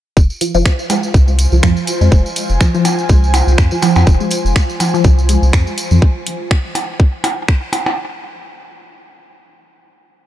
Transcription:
0.17 F1 F4, kick, tambourine
0.30 tambourine
0.41 F3, open hi-hat, tambourine
0.55 F1 F3, tambourine
0.65 C5, finger snap, kick, tambourine
0.79 tambourine
0.90 G#3, open hi-hat, tambourine, percussion blips
1.02 G#5, tambourine
1.14 C2, kick, tambourine
1.28 tambourine
1.39 open hi-hat, tambourine
1.52 C2 F3, tambourine
1.63 F2 F3, finger snap, kick, tambourine
1.77 tambourine
1.87 open hi-hat, tambourine
2.01 F2 G#3, tambourine
2.12 F1, kick, tambourine
2.26 tambourine
2.36 open hi-hat, tambourine
2.50 F1, tambourine
2.61 F3, finger snap, kick, tambourine
2.74 F3, tambourine
2.85 open hi-hat, tambourine, percussion blips
2.99 tambourine
3.09 C2 G#3, kick, tambourine
3.24 tambourine
3.34 open hi-hat, tambourine, percussion blips
3.47 C2, tambourine
3.58 F2, finger snap, kick, tambourine
3.71 F3, tambourine
3.82 F3, open hi-hat, tambourine, percussion blips
3.96 F2, tambourine, percussion blips
4.07 F1, kick, tambourine
4.20 G#3, tambourine
4.31 open hi-hat, tambourine
4.45 F1, tambourine
4.56 finger snap, kick, tambourine
4.70 tambourine
4.80 F3, open hi-hat, tambourine, percussion blips
4.94 F3, tambourine
5.04 C2, kick, tambourine
5.19 tambourine
5.29 G#3, open hi-hat, tambourine
5.43 C2, tambourine
5.53 F2, finger snap, kick, tambourine
5.67 tambourine
5.78 open hi-hat, tambourine
5.91 F2 F3, tambourine
6.02 kick
6.27 open hi-hat
6.51 finger snap, kick
6.75 open hi-hat, percussion blips
7.00 kick
7.24 open hi-hat, percussion blips
7.48 finger snap, kick
7.73 open hi-hat, percussion blips
7.86 percussion blips

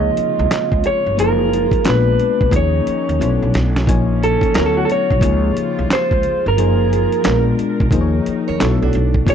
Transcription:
Already playing: C#2 C3 C#3 F3 G#3 A#3 D#4 F4 G#4 C#5 D#5
0.17 muted upright bass stroke, closed hi-hat
0.39 C2
0.51 snare, clap, closed hi-hat
0.72 C#2, kick
0.84 C#5, closed hi-hat
1.06 G1
1.16 F#1 F3 A#3 D#4 F4 G#4 C5, closed hi-hat
1.20 A#4
1.53 closed hi-hat
1.71 kick, closed hi-hat
1.84 A#1 A#2 B2 G#3 B3 D4 F4 A4, snare, clap, closed hi-hat
1.89 B4
1.94 A#3
2.20 closed hi-hat
2.41 B1, kick
2.51 D#2 D#3 F3 A#3 C#4 D#4 G#4 C#5, kick, closed hi-hat
2.56 C#5
2.87 muted upright bass stroke, closed hi-hat
3.09 D#2, closed hi-hat
3.19 B1 F#3 A3 B3 D4 E4 A4 C5, closed hi-hat
3.29 C#5
3.42 B1
3.54 B1, snare, closed hi-hat
3.76 snare, closed hi-hat
3.86 A#1 C#3 F3 A#3 C#4 D#4 G#5, kick, closed hi-hat
3.90 C#5
4.23 A4, closed hi-hat
4.41 kick, closed hi-hat
4.54 D2 D3 E3 A3 B3 E4 F#4 A4 A#4, snare, clap, closed hi-hat
4.58 F#3 C#5
4.66 A4
4.77 F#4
4.85 A4
4.90 C#5, muted upright bass stroke, closed hi-hat
5.11 B1, kick
5.19 C#2 C3 C#3 F3 G#3 A#3 D#4 F4, kick, closed hi-hat
5.25 G#4
5.57 muted upright bass stroke, closed hi-hat
5.79 C2
5.90 C5, snare, clap, closed hi-hat
6.11 C#2, kick
6.23 closed hi-hat
6.46 G1 A#4
6.56 F#1 F3 A#3 D#4 F4 G#4 A#4 C5, closed hi-hat
6.93 closed hi-hat
7.12 closed hi-hat
7.23 A#1 B2 G#3 B3 D4 F4 A#4, snare, clap, closed hi-hat
7.59 muted upright bass stroke, closed hi-hat
7.80 B1, kick
7.90 D#2 D#3 F3 A#3 D#4 G#4 C5, kick, closed hi-hat
8.01 C#5
8.26 muted upright bass stroke, closed hi-hat
8.48 D#2 A#4 C#5
8.58 B1 F#3 A3 B3 D4 E4 F#4 A4 C#5, snare, clap, closed hi-hat
8.82 B1 D4 F#4
8.93 B1, closed hi-hat
9.14 kick
9.25 A#1 C#3 F3 G#3 A#3 C#4 D#4 G#4 C#5, kick, closed hi-hat
9.30 C#5

